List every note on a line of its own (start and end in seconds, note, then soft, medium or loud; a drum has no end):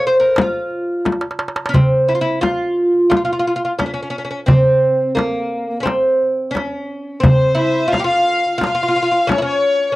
0.03 0.18 C5 loud
0.03 darbuka ka soft
0.20 0.39 A#4 medium
0.20 darbuka ka soft
0.36 darbuka tek medium
0.36 frame drum medium
0.41 1.23 F4 medium
0.70 darbuka ka soft
1.05 darbuka tek medium
1.05 frame drum medium
1.12 darbuka ka medium
1.21 darbuka tek medium
1.31 darbuka ka medium
1.39 darbuka tek medium
1.48 darbuka ka medium
1.56 darbuka tek medium
1.66 1.75 C#4 medium
1.66 darbuka ka loud
1.74 2.09 C4 medium
1.74 darbuka dum medium
1.74 frame drum medium
2.08 2.14 E4 medium
2.15 2.21 F4 medium
2.21 2.40 E4 medium
2.41 3.09 F4 medium
2.41 darbuka tek medium
2.41 frame drum medium
2.94 darbuka ka soft
3.10 3.16 F4 medium
3.10 darbuka tek medium
3.10 frame drum medium
3.17 3.24 F4 medium
3.25 3.31 F4 medium
3.33 3.38 F4 medium
3.39 3.46 F4 medium
3.45 3.55 F4 medium
3.45 darbuka ka soft
3.56 3.63 F4 medium
3.65 3.72 F4 medium
3.79 3.85 C#4 medium
3.79 darbuka tek medium
3.79 frame drum medium
3.86 3.92 C#4 medium
3.94 4.01 C#4 medium
4.03 4.09 C#4 medium
4.10 4.17 C#4 medium
4.18 4.23 C#4 medium
4.25 4.29 C#4 medium
4.31 4.39 C#4 medium
4.46 5.14 C4 medium
4.46 frame drum medium
4.46 darbuka dum medium
5.15 5.79 A#3 medium
5.15 darbuka tek medium
5.15 frame drum medium
5.80 6.55 C4 medium
5.80 5.86 C#4 medium
5.86 darbuka tek medium
5.86 frame drum medium
6.22 darbuka ka soft
6.51 7.23 C#4 medium
6.55 darbuka tek medium
6.55 frame drum soft
7.20 7.54 C4 medium
7.20 7.93 C5 medium
7.20 7.56 C5 medium
7.20 frame drum medium
7.25 darbuka dum medium
7.55 7.87 E4 medium
7.55 7.92 E5 medium
7.88 7.97 F4 medium
7.92 8.04 F5 loud
7.92 8.07 F5 medium
7.92 darbuka tek medium
7.92 frame drum medium
7.99 8.04 G4 medium
8.04 8.57 F4 medium
8.04 8.56 F5 medium
8.04 8.58 F5 medium
8.46 darbuka ka soft
8.58 8.65 F4 loud
8.58 9.30 F5 loud
8.58 frame drum medium
8.64 8.74 F4 medium
8.64 9.27 F5 medium
8.64 darbuka tek medium
8.75 8.82 F4 medium
8.83 8.87 F4 medium
8.88 8.95 F4 medium
8.96 9.01 F4 medium
8.96 darbuka ka soft
9.03 9.10 F4 medium
9.11 9.20 F4 medium
9.27 9.35 C#4 medium
9.27 9.43 C#5 loud
9.27 9.43 C#5 medium
9.27 frame drum medium
9.32 darbuka tek medium
9.38 9.91 C#4 medium
9.38 9.42 E4 medium
9.44 9.94 C#5 medium
9.44 9.96 C#5 loud
9.92 9.96 C#4 medium